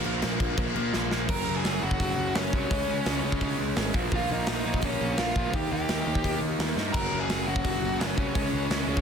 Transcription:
0.04 picked electric bass A#1, overdriven electric guitar A#2 F3 A#3, crash
0.22 picked electric bass A#1, overdriven electric guitar A#2 F3 A#3, snare, crash
0.39 picked electric bass A#1, overdriven electric guitar A#2 F3 A#3, kick, crash
0.57 picked electric bass A#1, overdriven electric guitar A#2 F3 A#3, kick, crash
0.75 overdriven electric guitar A#2 F3 A#3, picked electric bass A#2, crash
0.92 picked electric bass A#1, overdriven electric guitar A#2 F3 A#3, snare
1.11 picked electric bass A#1, overdriven electric guitar A#2 F3 A#3, snare
1.29 picked electric bass F#1, overdriven electric guitar F#2 C#3 F#3, lead electric guitar A#4 A#5, kick, crash
1.47 picked electric bass F#1
1.57 lead electric guitar G#4 G#5
1.64 picked electric bass F#1, overdriven electric guitar F#2 C#3 F#3, snare, open hi-hat
1.82 picked electric bass F#1, overdriven electric guitar F#2 C#3 F#3, lead electric guitar F#4 F#5
1.91 kick
2.00 picked electric bass F#1, overdriven electric guitar F#2 C#3 F#3, kick, open hi-hat
2.18 picked electric bass F#1
2.35 picked electric bass F#1, overdriven electric guitar F#2 C#3 F#3, lead electric guitar C#4 C#5, snare, open hi-hat
2.53 picked electric bass C2, overdriven electric guitar F#2 C#3 F#3, lead electric guitar C#4 C#5, kick
2.70 picked electric bass C#2, overdriven electric guitar C#3 G#3 C#4, kick, open hi-hat
2.88 picked electric bass C#2
3.06 picked electric bass C#2, overdriven electric guitar C#3 G#3 C#4, snare, open hi-hat
3.24 picked electric bass C#2, overdriven electric guitar C#3 G#3 C#4
3.32 kick
3.41 picked electric bass C#2, overdriven electric guitar C#3 G#3 C#4, kick, open hi-hat
3.59 picked electric bass C#2
3.76 picked electric bass G#1, overdriven electric guitar C#3 G#3 C#4, snare, open hi-hat
3.94 picked electric bass A#1, overdriven electric guitar A#2 F3 A#3, kick
4.11 picked electric bass A#1, overdriven electric guitar A#2 F3 A#3, lead electric guitar F4, kick, open hi-hat
4.15 lead electric guitar F5
4.30 picked electric bass A#1, lead electric guitar D#4 D#5
4.47 picked electric bass A#1, overdriven electric guitar A#2 F3 A#3, snare, open hi-hat
4.65 picked electric bass A#1, overdriven electric guitar A#2 F3 A#3
4.74 kick
4.81 picked electric bass A#1, overdriven electric guitar A#2 F3 A#3, lead electric guitar C#4 C#5, kick, open hi-hat
5.01 picked electric bass A#1
5.17 picked electric bass A#1, overdriven electric guitar A#2 F3 A#3, lead electric guitar F4 F5, snare, open hi-hat
5.36 picked electric bass A#1, overdriven electric guitar A#2 F3 A#3, kick
5.53 picked electric bass D#2, overdriven electric guitar D#3 A#3 D#4, lead electric guitar G4 G5, kick, open hi-hat
5.72 picked electric bass D#2, lead electric guitar G4 G5
5.89 picked electric bass D#2, overdriven electric guitar D#3 A#3 D#4, snare, open hi-hat
6.06 picked electric bass D#2, overdriven electric guitar D#3 A#3 D#4
6.15 kick
6.24 picked electric bass D#2, overdriven electric guitar D#3 A#3 D#4, kick, open hi-hat
6.41 picked electric bass D#2
6.59 picked electric bass D#2, overdriven electric guitar D#3 A#3 D#4, snare, open hi-hat
6.76 picked electric bass G2, overdriven electric guitar D#3 A#3 D#4, snare
6.93 picked electric bass F#1, overdriven electric guitar F#2 C#3 F#3, lead electric guitar A#4 A#5, kick, crash
7.12 picked electric bass F#1
7.20 lead electric guitar G#4 G#5
7.29 picked electric bass F#1, overdriven electric guitar F#2 C#3 F#3, snare, open hi-hat
7.46 picked electric bass F#1, overdriven electric guitar F#2 C#3 F#3, lead electric guitar F#4 F#5
7.56 kick
7.64 picked electric bass F#1, overdriven electric guitar F#2 C#3 F#3, kick, open hi-hat
7.82 picked electric bass F#1
7.99 picked electric bass F#1, overdriven electric guitar F#2 C#3 F#3, lead electric guitar C#4 C#5, snare, open hi-hat
8.17 picked electric bass C2, overdriven electric guitar F#2 C#3 F#3, lead electric guitar C#4 C#5, kick
8.34 picked electric bass C#2, overdriven electric guitar C#3 G#3 C#4, kick, open hi-hat
8.53 picked electric bass C#2
8.70 picked electric bass C#2, overdriven electric guitar C#3 G#3 C#4, snare, open hi-hat
8.87 picked electric bass C#2, overdriven electric guitar C#3 G#3 C#4
8.97 kick

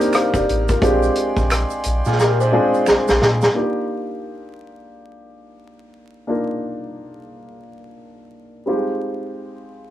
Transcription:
Already playing: upright piano A#3 C4 D4 D#4 G4, harmonium G4 D5 F5 A#5
0.00 closed hi-hat, shaker
0.13 upright piano C5 F5, finger snap, cross-stick, closed hi-hat, shaker
0.34 analog synth bass F1, upright piano G4 D5, kick, shaker
0.49 analog synth bass A1, closed hi-hat
0.68 upright piano F4 A#4, kick, closed hi-hat, shaker
0.81 analog synth bass A#1, upright piano G#3 C4 D4 F4 G4, harmonium G#3 G5 C6, kick, closed hi-hat, shaker
1.03 shaker
1.15 closed hi-hat
1.36 analog synth bass A#1, kick, shaker
1.50 finger snap, cross-stick, closed hi-hat, shaker
1.70 shaker
1.83 analog synth bass A#1, closed hi-hat, shaker
2.05 analog synth bass A#2, clean electric guitar F4 G#4, cross-stick, shaker
2.19 clean electric guitar G4 A#4, snare, shaker
2.40 clean electric guitar G#4 C5, shaker
2.52 upright piano G#3 C4 D4 F4 G#4
2.74 shaker
2.86 analog synth bass A#1, finger snap, snare, shaker
3.08 analog synth bass A#1, snare, shaker
3.22 analog synth bass A#2, snare
3.41 snare, shaker
3.54 upright piano A#3 D4 D#4 F4 G4
6.27 upright piano A#3 D4 D#4 F4 A#4
8.66 upright piano G3 C4 D#4 F4 G4
8.72 upright piano G#3

